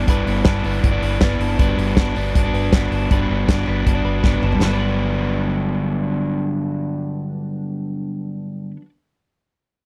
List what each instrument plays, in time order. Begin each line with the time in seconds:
Already playing: clean electric guitar G3 B3 D4
0.06 fingered electric bass G1, clean electric guitar G2 B4, overdriven electric guitar G3 B3 E4 B4 D5, kick, closed hi-hat
0.26 fingered electric bass G1, clean electric guitar B3, open hi-hat
0.45 fingered electric bass G1, overdriven electric guitar B3 E4 B4 D5, clean electric guitar D4, kick, snare, closed hi-hat
0.63 fingered electric bass G1, overdriven electric guitar B3 E4 B4 D5, clean electric guitar B3, open hi-hat
0.83 fingered electric bass G1, clean electric guitar D4, kick, closed hi-hat
0.92 overdriven electric guitar E4 B4 D5
1.02 fingered electric bass G1, clean electric guitar B4, open hi-hat
1.20 fingered electric bass G1, overdriven electric guitar B3 E4 B4 D5, clean electric guitar B3, kick, snare, closed hi-hat
1.39 fingered electric bass G1, clean electric guitar D4, open hi-hat
1.58 fingered electric bass G1, clean electric guitar G2 B4, overdriven electric guitar G3 B3 D4 F#4 D5, kick, closed hi-hat
1.77 fingered electric bass G1, clean electric guitar B3, open hi-hat
1.96 overdriven electric guitar B3 D4 F#4 D5, clean electric guitar D4, kick, snare, closed hi-hat
2.15 fingered electric bass G1, overdriven electric guitar B3 D4 F#4 D5, clean electric guitar B3, open hi-hat
2.35 fingered electric bass G1, clean electric guitar D4, kick, closed hi-hat
2.43 overdriven electric guitar D4 F#4 D5
2.53 fingered electric bass G1, clean electric guitar B4, open hi-hat
2.72 fingered electric bass G1, overdriven electric guitar B3 D4 F#4 D5, clean electric guitar B3, kick, snare, closed hi-hat
2.91 fingered electric bass G1, clean electric guitar D4, open hi-hat
3.10 fingered electric bass G1, clean electric guitar G2 B4, overdriven electric guitar G3 B3 D4 F#4 D5, kick, closed hi-hat
3.29 fingered electric bass G1, clean electric guitar B3
3.48 fingered electric bass G1, overdriven electric guitar B3 D4 F#4 D5, clean electric guitar D4, kick, snare, closed hi-hat
3.66 fingered electric bass G1, overdriven electric guitar B3 D4 F#4 D5, clean electric guitar B3
3.86 fingered electric bass G1, clean electric guitar D4, kick, closed hi-hat
3.95 overdriven electric guitar D4 F#4 D5
4.04 fingered electric bass G1, clean electric guitar B4
4.23 fingered electric bass G1, overdriven electric guitar B3 D4 F#4 D5, clean electric guitar B3, kick, snare
4.34 high tom
4.42 fingered electric bass G1, clean electric guitar D4, mid tom
4.52 clean electric guitar G2, overdriven electric guitar G3, floor tom
4.60 fingered electric bass G1, clean electric guitar D3 F#3, overdriven electric guitar B3, snare, china
4.65 clean electric guitar B3, overdriven electric guitar D4 F#4
4.71 clean electric guitar D4 B4, overdriven electric guitar D5